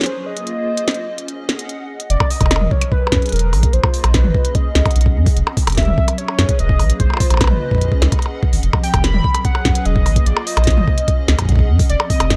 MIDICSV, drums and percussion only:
0, 0, Header, 1, 3, 480
1, 0, Start_track
1, 0, Tempo, 408163
1, 550, Time_signature, 4, 2, 24, 8
1, 14540, End_track
2, 0, Start_track
2, 0, Title_t, "Percussion blips"
2, 2590, Note_on_c, 9, 76, 78
2, 2708, Note_off_c, 9, 76, 0
2, 2830, Note_on_c, 9, 76, 39
2, 2890, Note_off_c, 9, 76, 0
2, 2890, Note_on_c, 9, 76, 49
2, 2950, Note_off_c, 9, 76, 0
2, 2950, Note_on_c, 9, 76, 55
2, 3010, Note_off_c, 9, 76, 0
2, 3010, Note_on_c, 9, 76, 66
2, 3127, Note_off_c, 9, 76, 0
2, 3310, Note_on_c, 9, 76, 38
2, 3427, Note_off_c, 9, 76, 0
2, 3610, Note_on_c, 9, 76, 61
2, 3727, Note_off_c, 9, 76, 0
2, 4150, Note_on_c, 9, 76, 37
2, 4268, Note_off_c, 9, 76, 0
2, 4510, Note_on_c, 9, 76, 82
2, 4628, Note_off_c, 9, 76, 0
2, 4750, Note_on_c, 9, 76, 84
2, 4867, Note_off_c, 9, 76, 0
2, 5710, Note_on_c, 9, 76, 54
2, 5828, Note_off_c, 9, 76, 0
2, 6431, Note_on_c, 9, 76, 75
2, 6549, Note_off_c, 9, 76, 0
2, 6671, Note_on_c, 9, 76, 80
2, 6789, Note_off_c, 9, 76, 0
2, 7150, Note_on_c, 9, 76, 36
2, 7268, Note_off_c, 9, 76, 0
2, 7390, Note_on_c, 9, 76, 59
2, 7508, Note_off_c, 9, 76, 0
2, 7991, Note_on_c, 9, 76, 36
2, 8108, Note_off_c, 9, 76, 0
2, 8351, Note_on_c, 9, 76, 33
2, 8391, Note_off_c, 9, 76, 0
2, 8391, Note_on_c, 9, 76, 44
2, 8431, Note_off_c, 9, 76, 0
2, 8431, Note_on_c, 9, 76, 56
2, 8549, Note_off_c, 9, 76, 0
2, 8590, Note_on_c, 9, 76, 35
2, 8631, Note_off_c, 9, 76, 0
2, 8631, Note_on_c, 9, 76, 41
2, 8671, Note_off_c, 9, 76, 0
2, 8671, Note_on_c, 9, 76, 49
2, 8711, Note_off_c, 9, 76, 0
2, 8711, Note_on_c, 9, 76, 52
2, 8750, Note_off_c, 9, 76, 0
2, 8750, Note_on_c, 9, 76, 58
2, 8790, Note_off_c, 9, 76, 0
2, 8790, Note_on_c, 9, 76, 62
2, 8908, Note_off_c, 9, 76, 0
2, 9551, Note_on_c, 9, 76, 23
2, 9631, Note_off_c, 9, 76, 0
2, 9631, Note_on_c, 9, 76, 31
2, 9710, Note_off_c, 9, 76, 0
2, 9710, Note_on_c, 9, 76, 38
2, 9828, Note_off_c, 9, 76, 0
2, 10270, Note_on_c, 9, 76, 73
2, 10388, Note_off_c, 9, 76, 0
2, 10510, Note_on_c, 9, 76, 82
2, 10628, Note_off_c, 9, 76, 0
2, 10990, Note_on_c, 9, 76, 37
2, 11108, Note_off_c, 9, 76, 0
2, 11230, Note_on_c, 9, 76, 56
2, 11347, Note_off_c, 9, 76, 0
2, 11830, Note_on_c, 9, 76, 35
2, 11947, Note_off_c, 9, 76, 0
2, 12190, Note_on_c, 9, 76, 75
2, 12308, Note_off_c, 9, 76, 0
2, 12430, Note_on_c, 9, 76, 86
2, 12548, Note_off_c, 9, 76, 0
2, 13390, Note_on_c, 9, 76, 55
2, 13507, Note_off_c, 9, 76, 0
2, 14110, Note_on_c, 9, 76, 79
2, 14228, Note_off_c, 9, 76, 0
2, 14350, Note_on_c, 9, 76, 84
2, 14467, Note_off_c, 9, 76, 0
2, 14540, End_track
3, 0, Start_track
3, 0, Title_t, "Drums"
3, 10, Note_on_c, 9, 38, 96
3, 41, Note_off_c, 9, 38, 0
3, 41, Note_on_c, 9, 38, 96
3, 71, Note_on_c, 9, 42, 49
3, 158, Note_off_c, 9, 38, 0
3, 189, Note_off_c, 9, 42, 0
3, 431, Note_on_c, 9, 42, 62
3, 548, Note_off_c, 9, 42, 0
3, 551, Note_on_c, 9, 42, 46
3, 669, Note_off_c, 9, 42, 0
3, 911, Note_on_c, 9, 42, 62
3, 1028, Note_off_c, 9, 42, 0
3, 1031, Note_on_c, 9, 38, 107
3, 1031, Note_on_c, 9, 42, 45
3, 1070, Note_off_c, 9, 42, 0
3, 1070, Note_on_c, 9, 42, 36
3, 1110, Note_off_c, 9, 42, 0
3, 1110, Note_on_c, 9, 42, 29
3, 1148, Note_off_c, 9, 38, 0
3, 1228, Note_off_c, 9, 42, 0
3, 1390, Note_on_c, 9, 42, 57
3, 1508, Note_off_c, 9, 42, 0
3, 1510, Note_on_c, 9, 42, 45
3, 1627, Note_off_c, 9, 42, 0
3, 1750, Note_on_c, 9, 38, 110
3, 1868, Note_off_c, 9, 38, 0
3, 1871, Note_on_c, 9, 42, 60
3, 1989, Note_off_c, 9, 42, 0
3, 1991, Note_on_c, 9, 42, 46
3, 2108, Note_off_c, 9, 42, 0
3, 2351, Note_on_c, 9, 42, 59
3, 2468, Note_off_c, 9, 42, 0
3, 2471, Note_on_c, 9, 42, 54
3, 2588, Note_off_c, 9, 42, 0
3, 2590, Note_on_c, 9, 36, 104
3, 2708, Note_off_c, 9, 36, 0
3, 2710, Note_on_c, 9, 46, 74
3, 2828, Note_off_c, 9, 46, 0
3, 2830, Note_on_c, 9, 36, 123
3, 2830, Note_on_c, 9, 42, 71
3, 2947, Note_off_c, 9, 42, 0
3, 2948, Note_off_c, 9, 36, 0
3, 2950, Note_on_c, 9, 38, 117
3, 2950, Note_on_c, 9, 42, 54
3, 3067, Note_off_c, 9, 38, 0
3, 3067, Note_off_c, 9, 42, 0
3, 3070, Note_on_c, 9, 45, 83
3, 3187, Note_off_c, 9, 45, 0
3, 3190, Note_on_c, 9, 36, 109
3, 3308, Note_off_c, 9, 36, 0
3, 3310, Note_on_c, 9, 42, 67
3, 3427, Note_off_c, 9, 42, 0
3, 3430, Note_on_c, 9, 36, 107
3, 3548, Note_off_c, 9, 36, 0
3, 3670, Note_on_c, 9, 36, 113
3, 3670, Note_on_c, 9, 38, 117
3, 3787, Note_off_c, 9, 38, 0
3, 3788, Note_off_c, 9, 36, 0
3, 3790, Note_on_c, 9, 42, 29
3, 3831, Note_off_c, 9, 42, 0
3, 3831, Note_on_c, 9, 42, 37
3, 3870, Note_off_c, 9, 42, 0
3, 3870, Note_on_c, 9, 42, 40
3, 3910, Note_off_c, 9, 42, 0
3, 3910, Note_on_c, 9, 42, 53
3, 3950, Note_off_c, 9, 42, 0
3, 3950, Note_on_c, 9, 42, 50
3, 3990, Note_off_c, 9, 42, 0
3, 3990, Note_on_c, 9, 42, 57
3, 4108, Note_off_c, 9, 42, 0
3, 4150, Note_on_c, 9, 46, 57
3, 4268, Note_off_c, 9, 46, 0
3, 4270, Note_on_c, 9, 36, 107
3, 4270, Note_on_c, 9, 42, 72
3, 4388, Note_off_c, 9, 36, 0
3, 4388, Note_off_c, 9, 42, 0
3, 4390, Note_on_c, 9, 42, 52
3, 4508, Note_off_c, 9, 42, 0
3, 4510, Note_on_c, 9, 36, 117
3, 4628, Note_off_c, 9, 36, 0
3, 4630, Note_on_c, 9, 46, 75
3, 4748, Note_off_c, 9, 46, 0
3, 4750, Note_on_c, 9, 42, 70
3, 4867, Note_off_c, 9, 42, 0
3, 4870, Note_on_c, 9, 36, 108
3, 4870, Note_on_c, 9, 38, 120
3, 4870, Note_on_c, 9, 42, 53
3, 4988, Note_off_c, 9, 36, 0
3, 4988, Note_off_c, 9, 38, 0
3, 4988, Note_off_c, 9, 42, 0
3, 4990, Note_on_c, 9, 45, 81
3, 5107, Note_off_c, 9, 45, 0
3, 5110, Note_on_c, 9, 36, 112
3, 5228, Note_off_c, 9, 36, 0
3, 5230, Note_on_c, 9, 42, 67
3, 5348, Note_off_c, 9, 42, 0
3, 5349, Note_on_c, 9, 42, 54
3, 5350, Note_on_c, 9, 36, 119
3, 5467, Note_off_c, 9, 42, 0
3, 5468, Note_off_c, 9, 36, 0
3, 5589, Note_on_c, 9, 38, 123
3, 5707, Note_off_c, 9, 38, 0
3, 5710, Note_on_c, 9, 36, 106
3, 5710, Note_on_c, 9, 42, 30
3, 5770, Note_off_c, 9, 42, 0
3, 5770, Note_on_c, 9, 42, 38
3, 5828, Note_off_c, 9, 36, 0
3, 5830, Note_off_c, 9, 42, 0
3, 5830, Note_on_c, 9, 42, 54
3, 5891, Note_off_c, 9, 42, 0
3, 5891, Note_on_c, 9, 42, 53
3, 5950, Note_on_c, 9, 36, 107
3, 6008, Note_off_c, 9, 42, 0
3, 6068, Note_off_c, 9, 36, 0
3, 6190, Note_on_c, 9, 36, 123
3, 6191, Note_on_c, 9, 46, 57
3, 6308, Note_off_c, 9, 36, 0
3, 6308, Note_off_c, 9, 46, 0
3, 6311, Note_on_c, 9, 42, 53
3, 6428, Note_off_c, 9, 42, 0
3, 6550, Note_on_c, 9, 36, 104
3, 6551, Note_on_c, 9, 46, 76
3, 6668, Note_off_c, 9, 36, 0
3, 6668, Note_off_c, 9, 46, 0
3, 6671, Note_on_c, 9, 42, 67
3, 6701, Note_off_c, 9, 42, 0
3, 6701, Note_on_c, 9, 42, 54
3, 6731, Note_off_c, 9, 42, 0
3, 6731, Note_on_c, 9, 42, 45
3, 6761, Note_off_c, 9, 42, 0
3, 6761, Note_on_c, 9, 42, 35
3, 6790, Note_on_c, 9, 36, 110
3, 6792, Note_off_c, 9, 42, 0
3, 6792, Note_on_c, 9, 38, 119
3, 6792, Note_on_c, 9, 42, 53
3, 6821, Note_off_c, 9, 42, 0
3, 6821, Note_on_c, 9, 42, 23
3, 6908, Note_off_c, 9, 36, 0
3, 6909, Note_off_c, 9, 38, 0
3, 6910, Note_on_c, 9, 45, 81
3, 6938, Note_off_c, 9, 42, 0
3, 7028, Note_off_c, 9, 45, 0
3, 7030, Note_on_c, 9, 36, 122
3, 7148, Note_off_c, 9, 36, 0
3, 7150, Note_on_c, 9, 42, 66
3, 7268, Note_off_c, 9, 42, 0
3, 7271, Note_on_c, 9, 42, 54
3, 7388, Note_off_c, 9, 42, 0
3, 7510, Note_on_c, 9, 38, 125
3, 7628, Note_off_c, 9, 38, 0
3, 7630, Note_on_c, 9, 42, 67
3, 7631, Note_on_c, 9, 36, 101
3, 7748, Note_off_c, 9, 36, 0
3, 7748, Note_off_c, 9, 42, 0
3, 7751, Note_on_c, 9, 42, 50
3, 7868, Note_off_c, 9, 42, 0
3, 7871, Note_on_c, 9, 36, 127
3, 7988, Note_off_c, 9, 36, 0
3, 7991, Note_on_c, 9, 46, 62
3, 8108, Note_off_c, 9, 46, 0
3, 8111, Note_on_c, 9, 42, 68
3, 8228, Note_off_c, 9, 42, 0
3, 8230, Note_on_c, 9, 42, 51
3, 8231, Note_on_c, 9, 36, 104
3, 8348, Note_off_c, 9, 36, 0
3, 8348, Note_off_c, 9, 42, 0
3, 8471, Note_on_c, 9, 36, 107
3, 8471, Note_on_c, 9, 46, 78
3, 8588, Note_off_c, 9, 36, 0
3, 8589, Note_off_c, 9, 46, 0
3, 8590, Note_on_c, 9, 42, 69
3, 8708, Note_off_c, 9, 42, 0
3, 8711, Note_on_c, 9, 36, 119
3, 8711, Note_on_c, 9, 38, 121
3, 8711, Note_on_c, 9, 42, 49
3, 8828, Note_off_c, 9, 36, 0
3, 8828, Note_off_c, 9, 38, 0
3, 8828, Note_off_c, 9, 42, 0
3, 8830, Note_on_c, 9, 45, 79
3, 8948, Note_off_c, 9, 45, 0
3, 9070, Note_on_c, 9, 36, 102
3, 9111, Note_off_c, 9, 36, 0
3, 9111, Note_on_c, 9, 36, 85
3, 9151, Note_off_c, 9, 36, 0
3, 9151, Note_on_c, 9, 36, 70
3, 9190, Note_off_c, 9, 36, 0
3, 9190, Note_on_c, 9, 36, 57
3, 9190, Note_on_c, 9, 42, 53
3, 9230, Note_off_c, 9, 36, 0
3, 9230, Note_on_c, 9, 36, 44
3, 9270, Note_off_c, 9, 36, 0
3, 9270, Note_on_c, 9, 36, 40
3, 9308, Note_off_c, 9, 42, 0
3, 9310, Note_off_c, 9, 36, 0
3, 9310, Note_on_c, 9, 36, 103
3, 9428, Note_off_c, 9, 36, 0
3, 9430, Note_on_c, 9, 38, 123
3, 9548, Note_off_c, 9, 38, 0
3, 9550, Note_on_c, 9, 36, 119
3, 9551, Note_on_c, 9, 42, 66
3, 9668, Note_off_c, 9, 36, 0
3, 9668, Note_off_c, 9, 42, 0
3, 9670, Note_on_c, 9, 42, 50
3, 9788, Note_off_c, 9, 42, 0
3, 9910, Note_on_c, 9, 36, 113
3, 10028, Note_off_c, 9, 36, 0
3, 10030, Note_on_c, 9, 46, 61
3, 10148, Note_off_c, 9, 46, 0
3, 10150, Note_on_c, 9, 42, 50
3, 10268, Note_off_c, 9, 42, 0
3, 10270, Note_on_c, 9, 36, 103
3, 10388, Note_off_c, 9, 36, 0
3, 10391, Note_on_c, 9, 46, 81
3, 10508, Note_off_c, 9, 46, 0
3, 10510, Note_on_c, 9, 36, 122
3, 10510, Note_on_c, 9, 42, 67
3, 10628, Note_off_c, 9, 36, 0
3, 10628, Note_off_c, 9, 42, 0
3, 10630, Note_on_c, 9, 38, 117
3, 10630, Note_on_c, 9, 42, 47
3, 10748, Note_off_c, 9, 38, 0
3, 10748, Note_off_c, 9, 42, 0
3, 10751, Note_on_c, 9, 45, 80
3, 10868, Note_off_c, 9, 45, 0
3, 10870, Note_on_c, 9, 36, 101
3, 10988, Note_off_c, 9, 36, 0
3, 10990, Note_on_c, 9, 42, 61
3, 11108, Note_off_c, 9, 42, 0
3, 11110, Note_on_c, 9, 36, 102
3, 11110, Note_on_c, 9, 42, 52
3, 11227, Note_off_c, 9, 42, 0
3, 11228, Note_off_c, 9, 36, 0
3, 11349, Note_on_c, 9, 38, 115
3, 11350, Note_on_c, 9, 36, 125
3, 11467, Note_off_c, 9, 38, 0
3, 11468, Note_off_c, 9, 36, 0
3, 11469, Note_on_c, 9, 42, 64
3, 11587, Note_off_c, 9, 42, 0
3, 11590, Note_on_c, 9, 42, 50
3, 11707, Note_off_c, 9, 42, 0
3, 11710, Note_on_c, 9, 36, 108
3, 11828, Note_off_c, 9, 36, 0
3, 11830, Note_on_c, 9, 46, 61
3, 11947, Note_off_c, 9, 46, 0
3, 11950, Note_on_c, 9, 36, 106
3, 11950, Note_on_c, 9, 42, 66
3, 12068, Note_off_c, 9, 36, 0
3, 12068, Note_off_c, 9, 42, 0
3, 12071, Note_on_c, 9, 42, 51
3, 12188, Note_off_c, 9, 42, 0
3, 12311, Note_on_c, 9, 46, 86
3, 12428, Note_off_c, 9, 46, 0
3, 12430, Note_on_c, 9, 42, 62
3, 12510, Note_off_c, 9, 42, 0
3, 12510, Note_on_c, 9, 42, 52
3, 12550, Note_off_c, 9, 42, 0
3, 12550, Note_on_c, 9, 36, 102
3, 12550, Note_on_c, 9, 38, 111
3, 12550, Note_on_c, 9, 42, 52
3, 12667, Note_off_c, 9, 38, 0
3, 12667, Note_off_c, 9, 42, 0
3, 12668, Note_off_c, 9, 36, 0
3, 12670, Note_on_c, 9, 45, 86
3, 12787, Note_off_c, 9, 45, 0
3, 12790, Note_on_c, 9, 36, 108
3, 12908, Note_off_c, 9, 36, 0
3, 12909, Note_on_c, 9, 42, 66
3, 13027, Note_off_c, 9, 42, 0
3, 13030, Note_on_c, 9, 36, 109
3, 13030, Note_on_c, 9, 42, 52
3, 13147, Note_off_c, 9, 42, 0
3, 13148, Note_off_c, 9, 36, 0
3, 13269, Note_on_c, 9, 38, 114
3, 13387, Note_off_c, 9, 38, 0
3, 13390, Note_on_c, 9, 36, 44
3, 13390, Note_on_c, 9, 42, 66
3, 13430, Note_off_c, 9, 36, 0
3, 13430, Note_on_c, 9, 36, 49
3, 13470, Note_off_c, 9, 36, 0
3, 13470, Note_on_c, 9, 36, 59
3, 13507, Note_off_c, 9, 42, 0
3, 13510, Note_off_c, 9, 36, 0
3, 13510, Note_on_c, 9, 36, 73
3, 13510, Note_on_c, 9, 42, 49
3, 13550, Note_off_c, 9, 36, 0
3, 13550, Note_on_c, 9, 36, 85
3, 13590, Note_off_c, 9, 36, 0
3, 13590, Note_on_c, 9, 36, 91
3, 13627, Note_off_c, 9, 42, 0
3, 13630, Note_off_c, 9, 36, 0
3, 13630, Note_on_c, 9, 36, 106
3, 13747, Note_off_c, 9, 36, 0
3, 13870, Note_on_c, 9, 36, 114
3, 13870, Note_on_c, 9, 46, 65
3, 13987, Note_off_c, 9, 36, 0
3, 13987, Note_off_c, 9, 46, 0
3, 13990, Note_on_c, 9, 42, 53
3, 14108, Note_off_c, 9, 42, 0
3, 14230, Note_on_c, 9, 36, 95
3, 14230, Note_on_c, 9, 46, 80
3, 14347, Note_off_c, 9, 36, 0
3, 14347, Note_off_c, 9, 46, 0
3, 14350, Note_on_c, 9, 42, 69
3, 14467, Note_off_c, 9, 42, 0
3, 14470, Note_on_c, 9, 36, 96
3, 14470, Note_on_c, 9, 38, 113
3, 14470, Note_on_c, 9, 42, 49
3, 14540, Note_off_c, 9, 36, 0
3, 14540, Note_off_c, 9, 38, 0
3, 14540, Note_off_c, 9, 42, 0
3, 14540, End_track
0, 0, End_of_file